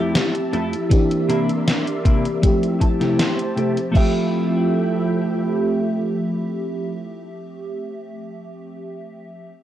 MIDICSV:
0, 0, Header, 1, 6, 480
1, 0, Start_track
1, 0, Key_signature, -1, "major"
1, 0, Tempo, 759494
1, 575, Time_signature, 4, 2, 24, 8
1, 6086, End_track
2, 0, Start_track
2, 0, Title_t, "String machine"
2, 0, Program_c, 0, 50
2, 0, Note_on_c, 0, 67, 89
2, 0, Note_on_c, 0, 76, 83
2, 0, Note_on_c, 0, 81, 94
2, 550, Note_off_c, 0, 67, 0
2, 566, Note_off_c, 0, 81, 0
2, 577, Note_on_c, 0, 74, 78
2, 578, Note_on_c, 0, 70, 82
2, 578, Note_on_c, 0, 84, 95
2, 1527, Note_off_c, 0, 70, 0
2, 1527, Note_off_c, 0, 74, 0
2, 1527, Note_off_c, 0, 84, 0
2, 1537, Note_on_c, 0, 81, 95
2, 1538, Note_on_c, 0, 67, 79
2, 1539, Note_on_c, 0, 60, 85
2, 2470, Note_off_c, 0, 76, 0
2, 2486, Note_off_c, 0, 81, 0
2, 2487, Note_off_c, 0, 60, 0
2, 2487, Note_off_c, 0, 67, 0
2, 2496, Note_on_c, 0, 53, 85
2, 2496, Note_on_c, 0, 69, 76
2, 2496, Note_on_c, 0, 79, 95
2, 2497, Note_on_c, 0, 76, 77
2, 4585, Note_off_c, 0, 69, 0
2, 4586, Note_off_c, 0, 53, 0
2, 4586, Note_off_c, 0, 79, 0
2, 4587, Note_off_c, 0, 76, 0
2, 6086, End_track
3, 0, Start_track
3, 0, Title_t, "Clean electric guitar"
3, 0, Program_c, 1, 27
3, 0, Note_on_c, 1, 41, 76
3, 0, Note_on_c, 1, 57, 71
3, 0, Note_on_c, 1, 64, 75
3, 0, Note_on_c, 1, 67, 86
3, 94, Note_off_c, 1, 41, 0
3, 96, Note_off_c, 1, 57, 0
3, 98, Note_off_c, 1, 64, 0
3, 100, Note_off_c, 1, 67, 0
3, 333, Note_on_c, 1, 41, 85
3, 336, Note_on_c, 1, 57, 77
3, 340, Note_on_c, 1, 64, 78
3, 345, Note_on_c, 1, 69, 96
3, 459, Note_off_c, 1, 41, 0
3, 460, Note_off_c, 1, 57, 0
3, 463, Note_off_c, 1, 64, 0
3, 465, Note_off_c, 1, 69, 0
3, 813, Note_on_c, 1, 48, 80
3, 817, Note_on_c, 1, 58, 76
3, 821, Note_on_c, 1, 62, 78
3, 824, Note_on_c, 1, 64, 90
3, 939, Note_off_c, 1, 48, 0
3, 941, Note_off_c, 1, 58, 0
3, 943, Note_off_c, 1, 62, 0
3, 945, Note_off_c, 1, 64, 0
3, 1294, Note_on_c, 1, 48, 85
3, 1298, Note_on_c, 1, 58, 78
3, 1301, Note_on_c, 1, 62, 76
3, 1305, Note_on_c, 1, 64, 94
3, 1419, Note_off_c, 1, 48, 0
3, 1422, Note_off_c, 1, 58, 0
3, 1423, Note_off_c, 1, 62, 0
3, 1425, Note_off_c, 1, 64, 0
3, 1778, Note_on_c, 1, 81, 71
3, 1898, Note_on_c, 1, 48, 76
3, 1902, Note_on_c, 1, 57, 70
3, 1905, Note_on_c, 1, 64, 70
3, 1910, Note_on_c, 1, 67, 84
3, 2000, Note_off_c, 1, 81, 0
3, 2014, Note_off_c, 1, 48, 0
3, 2016, Note_off_c, 1, 57, 0
3, 2016, Note_on_c, 1, 72, 75
3, 2018, Note_off_c, 1, 64, 0
3, 2020, Note_off_c, 1, 67, 0
3, 2251, Note_on_c, 1, 48, 85
3, 2255, Note_on_c, 1, 57, 74
3, 2258, Note_on_c, 1, 64, 77
3, 2263, Note_on_c, 1, 67, 90
3, 2378, Note_off_c, 1, 48, 0
3, 2380, Note_off_c, 1, 57, 0
3, 2381, Note_off_c, 1, 64, 0
3, 2384, Note_off_c, 1, 67, 0
3, 2470, Note_off_c, 1, 72, 0
3, 2475, Note_on_c, 1, 57, 79
3, 2490, Note_on_c, 1, 64, 75
3, 2505, Note_on_c, 1, 65, 74
3, 2520, Note_on_c, 1, 67, 88
3, 4565, Note_off_c, 1, 57, 0
3, 4580, Note_off_c, 1, 64, 0
3, 4595, Note_off_c, 1, 65, 0
3, 4610, Note_off_c, 1, 67, 0
3, 6086, End_track
4, 0, Start_track
4, 0, Title_t, "FM electric piano"
4, 0, Program_c, 2, 5
4, 0, Control_c, 2, 64, 127
4, 0, Note_on_c, 2, 53, 79
4, 0, Note_on_c, 2, 57, 71
4, 0, Note_on_c, 2, 60, 73
4, 0, Note_on_c, 2, 64, 72
4, 0, Note_on_c, 2, 67, 85
4, 524, Note_off_c, 2, 53, 0
4, 527, Note_off_c, 2, 57, 0
4, 529, Note_off_c, 2, 60, 0
4, 531, Note_off_c, 2, 64, 0
4, 534, Note_off_c, 2, 67, 0
4, 565, Note_on_c, 2, 52, 80
4, 570, Note_on_c, 2, 58, 74
4, 575, Note_on_c, 2, 60, 69
4, 580, Note_on_c, 2, 62, 71
4, 582, Control_c, 2, 64, 0
4, 585, Note_on_c, 2, 67, 87
4, 704, Control_c, 2, 64, 127
4, 1484, Note_off_c, 2, 52, 0
4, 1486, Note_off_c, 2, 58, 0
4, 1489, Note_off_c, 2, 60, 0
4, 1492, Note_off_c, 2, 62, 0
4, 1494, Note_off_c, 2, 67, 0
4, 1529, Note_on_c, 2, 53, 80
4, 1533, Note_on_c, 2, 57, 70
4, 1537, Note_on_c, 2, 60, 68
4, 1543, Note_on_c, 2, 64, 70
4, 1544, Control_c, 2, 64, 0
4, 1547, Note_on_c, 2, 67, 86
4, 1657, Control_c, 2, 64, 127
4, 2446, Note_off_c, 2, 53, 0
4, 2448, Note_off_c, 2, 57, 0
4, 2450, Note_off_c, 2, 60, 0
4, 2453, Note_off_c, 2, 64, 0
4, 2455, Note_off_c, 2, 67, 0
4, 2482, Note_on_c, 2, 53, 80
4, 2490, Note_on_c, 2, 57, 73
4, 2497, Note_on_c, 2, 60, 74
4, 2504, Control_c, 2, 64, 0
4, 2504, Note_on_c, 2, 76, 75
4, 2510, Note_on_c, 2, 67, 89
4, 2604, Control_c, 2, 64, 127
4, 4572, Note_off_c, 2, 53, 0
4, 4580, Note_off_c, 2, 57, 0
4, 4586, Note_off_c, 2, 60, 0
4, 4594, Note_off_c, 2, 76, 0
4, 4599, Note_off_c, 2, 67, 0
4, 6002, Control_c, 2, 64, 0
4, 6086, End_track
5, 0, Start_track
5, 0, Title_t, "Muted clean electric guitar strokes"
5, 1772, Note_on_c, 9, 29, 80
5, 1835, Note_off_c, 9, 29, 0
5, 6086, End_track
6, 0, Start_track
6, 0, Title_t, "Drums"
6, 96, Note_on_c, 9, 38, 122
6, 96, Note_on_c, 9, 42, 90
6, 159, Note_off_c, 9, 38, 0
6, 159, Note_off_c, 9, 42, 0
6, 221, Note_on_c, 9, 42, 41
6, 284, Note_off_c, 9, 42, 0
6, 337, Note_on_c, 9, 42, 37
6, 400, Note_off_c, 9, 42, 0
6, 462, Note_on_c, 9, 42, 36
6, 526, Note_off_c, 9, 42, 0
6, 576, Note_on_c, 9, 36, 119
6, 577, Note_on_c, 9, 42, 89
6, 640, Note_off_c, 9, 36, 0
6, 640, Note_off_c, 9, 42, 0
6, 702, Note_on_c, 9, 42, 37
6, 765, Note_off_c, 9, 42, 0
6, 819, Note_on_c, 9, 42, 61
6, 882, Note_off_c, 9, 42, 0
6, 944, Note_on_c, 9, 42, 37
6, 1007, Note_off_c, 9, 42, 0
6, 1059, Note_on_c, 9, 38, 115
6, 1059, Note_on_c, 9, 42, 84
6, 1123, Note_off_c, 9, 38, 0
6, 1123, Note_off_c, 9, 42, 0
6, 1184, Note_on_c, 9, 42, 40
6, 1247, Note_off_c, 9, 42, 0
6, 1297, Note_on_c, 9, 36, 104
6, 1299, Note_on_c, 9, 42, 60
6, 1360, Note_off_c, 9, 36, 0
6, 1362, Note_off_c, 9, 42, 0
6, 1424, Note_on_c, 9, 42, 37
6, 1487, Note_off_c, 9, 42, 0
6, 1537, Note_on_c, 9, 36, 112
6, 1538, Note_on_c, 9, 42, 86
6, 1600, Note_off_c, 9, 36, 0
6, 1601, Note_off_c, 9, 42, 0
6, 1663, Note_on_c, 9, 42, 37
6, 1726, Note_off_c, 9, 42, 0
6, 1777, Note_on_c, 9, 36, 60
6, 1778, Note_on_c, 9, 42, 61
6, 1840, Note_off_c, 9, 36, 0
6, 1841, Note_off_c, 9, 42, 0
6, 1903, Note_on_c, 9, 38, 36
6, 1903, Note_on_c, 9, 42, 36
6, 1966, Note_off_c, 9, 38, 0
6, 1966, Note_off_c, 9, 42, 0
6, 2018, Note_on_c, 9, 38, 116
6, 2018, Note_on_c, 9, 42, 89
6, 2081, Note_off_c, 9, 38, 0
6, 2081, Note_off_c, 9, 42, 0
6, 2143, Note_on_c, 9, 42, 41
6, 2207, Note_off_c, 9, 42, 0
6, 2259, Note_on_c, 9, 42, 36
6, 2322, Note_off_c, 9, 42, 0
6, 2384, Note_on_c, 9, 42, 34
6, 2447, Note_off_c, 9, 42, 0
6, 2497, Note_on_c, 9, 36, 109
6, 2499, Note_on_c, 9, 49, 80
6, 2560, Note_off_c, 9, 36, 0
6, 2563, Note_off_c, 9, 49, 0
6, 6086, End_track
0, 0, End_of_file